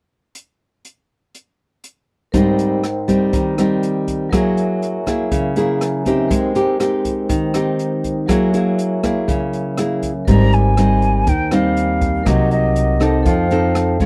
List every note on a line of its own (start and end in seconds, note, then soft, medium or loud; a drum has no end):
0.35 closed hi-hat soft
0.85 closed hi-hat soft
1.35 closed hi-hat soft
1.84 closed hi-hat soft
2.32 3.30 G#2 medium
2.32 2.83 G3 medium
2.32 2.83 C4 medium
2.32 2.83 D#4 medium
2.32 4.27 A#4 soft
2.32 4.28 C5 soft
2.32 4.29 D#5 soft
2.32 kick medium
2.32 closed hi-hat medium
2.37 4.30 G5 medium
2.59 closed hi-hat soft
2.84 cross-stick medium
2.84 closed hi-hat soft
3.08 3.54 G3 medium
3.08 3.54 C4 medium
3.08 3.54 D#4 medium
3.08 kick soft
3.08 closed hi-hat soft
3.33 4.30 D#3 medium
3.33 kick medium
3.33 closed hi-hat medium
3.58 4.29 G3 soft
3.58 4.29 C4 medium
3.58 4.29 D#4 medium
3.58 cross-stick medium
3.58 closed hi-hat soft
3.83 closed hi-hat soft
4.08 kick soft
4.08 closed hi-hat soft
4.29 6.25 F#3 medium
4.29 5.29 F#3 medium
4.29 5.03 A#3 medium
4.29 5.03 E4 medium
4.29 6.26 A#4 medium
4.29 6.27 C#5 medium
4.29 kick medium
4.29 cross-stick medium
4.29 closed hi-hat medium
4.34 5.03 G#4 medium
4.34 6.04 E5 soft
4.34 5.80 G#5 medium
4.57 closed hi-hat soft
4.82 closed hi-hat soft
5.06 5.52 A#3 medium
5.06 5.53 E4 medium
5.06 5.53 G#4 medium
5.06 kick soft
5.06 cross-stick medium
5.06 closed hi-hat soft
5.32 6.28 C#3 medium
5.32 kick soft
5.32 closed hi-hat soft
5.56 6.02 A#3 medium
5.56 6.02 E4 medium
5.56 6.03 G#4 medium
5.56 5.79 A#5 soft
5.56 closed hi-hat soft
5.81 6.04 G#5 soft
5.81 cross-stick medium
5.81 closed hi-hat soft
6.05 6.54 C4 medium
6.05 6.54 D#4 medium
6.05 6.55 G4 medium
6.05 6.29 E5 soft
6.05 kick soft
6.05 closed hi-hat soft
6.28 8.24 G#3 medium
6.28 7.27 G#3 medium
6.28 8.24 A#4 medium
6.28 8.25 C5 medium
6.28 kick medium
6.28 closed hi-hat medium
6.32 8.26 D#5 soft
6.32 8.27 G5 medium
6.55 6.76 C4 medium
6.55 6.76 D#4 medium
6.55 6.77 G4 medium
6.55 closed hi-hat soft
6.80 7.50 C4 medium
6.80 7.51 D#4 medium
6.80 7.51 G4 medium
6.80 cross-stick soft
6.80 closed hi-hat soft
7.05 kick soft
7.05 closed hi-hat soft
7.29 8.26 D#3 medium
7.29 kick soft
7.29 closed hi-hat medium
7.54 8.25 C4 medium
7.54 8.25 D#4 medium
7.54 8.25 G4 medium
7.54 cross-stick medium
7.54 closed hi-hat soft
7.79 closed hi-hat soft
8.04 kick soft
8.04 closed hi-hat soft
8.26 10.22 F#3 medium
8.26 9.25 F#3 medium
8.26 8.50 A#3 medium
8.26 8.50 E4 medium
8.26 8.50 G#4 medium
8.26 10.23 A#4 medium
8.26 10.23 C#5 medium
8.26 kick medium
8.26 cross-stick medium
8.26 closed hi-hat medium
8.31 10.24 E5 soft
8.31 10.25 G#5 medium
8.54 9.00 A#3 medium
8.54 9.00 E4 medium
8.54 9.00 G#4 medium
8.54 closed hi-hat soft
8.79 closed hi-hat soft
9.03 9.74 A#3 medium
9.03 9.74 E4 medium
9.03 9.74 G#4 medium
9.03 kick soft
9.03 cross-stick medium
9.03 closed hi-hat soft
9.28 10.25 C#3 medium
9.28 kick medium
9.28 closed hi-hat soft
9.53 closed hi-hat soft
9.78 10.12 A#3 medium
9.78 10.12 E4 soft
9.78 10.12 G#4 medium
9.78 cross-stick medium
9.78 closed hi-hat soft
10.02 kick soft
10.02 closed hi-hat soft
10.25 11.23 G#1 medium
10.25 11.24 G#2 medium
10.25 10.73 G3 medium
10.25 10.74 C4 medium
10.25 10.74 D#4 medium
10.25 12.21 A#4 soft
10.25 12.22 C5 soft
10.25 12.23 D#5 soft
10.25 10.55 A#5 loud
10.25 kick medium
10.25 closed hi-hat soft
10.31 12.24 G#5 medium
10.52 11.30 G#5 medium
10.52 closed hi-hat soft
10.77 11.27 G3 medium
10.77 11.27 C4 medium
10.77 11.27 D#4 medium
10.77 cross-stick medium
10.77 closed hi-hat soft
11.02 closed hi-hat soft
11.27 12.22 D#2 medium
11.27 12.24 D#3 medium
11.27 11.55 G5 medium
11.27 kick medium
11.27 closed hi-hat soft
11.51 12.22 G3 medium
11.51 12.22 C4 medium
11.51 12.22 D#4 medium
11.51 12.29 F5 medium
11.51 cross-stick medium
11.51 closed hi-hat soft
11.77 closed hi-hat soft
12.01 kick soft
12.01 closed hi-hat soft
12.23 13.21 C2 medium
12.23 13.23 C3 medium
12.23 12.96 F#3 medium
12.23 12.97 A#3 medium
12.23 12.97 D#4 medium
12.23 13.22 A#4 soft
12.23 13.24 D#5 soft
12.23 13.23 D6 soft
12.23 kick medium
12.23 cross-stick medium
12.23 closed hi-hat soft
12.28 12.52 D#5 medium
12.28 13.25 F#5 medium
12.51 13.27 D#5 medium
12.51 closed hi-hat soft
12.76 closed hi-hat soft
13.00 13.46 C4 medium
13.00 13.46 D#4 medium
13.00 13.46 A4 medium
13.00 cross-stick medium
13.00 closed hi-hat soft
13.23 14.06 F2 medium
13.23 14.00 F3 medium
13.23 14.06 A4 soft
13.23 14.06 C5 soft
13.23 14.06 D#5 soft
13.23 14.00 F5 medium
13.23 kick medium
13.23 closed hi-hat soft
13.29 14.06 G5 medium
13.51 13.96 C4 medium
13.51 13.96 D#4 medium
13.51 13.96 A4 medium
13.51 closed hi-hat soft
13.75 cross-stick medium
13.75 closed hi-hat soft
14.00 14.06 G#3 medium
14.00 14.06 C#4 medium
14.00 14.06 F4 medium
14.00 kick soft
14.00 closed hi-hat soft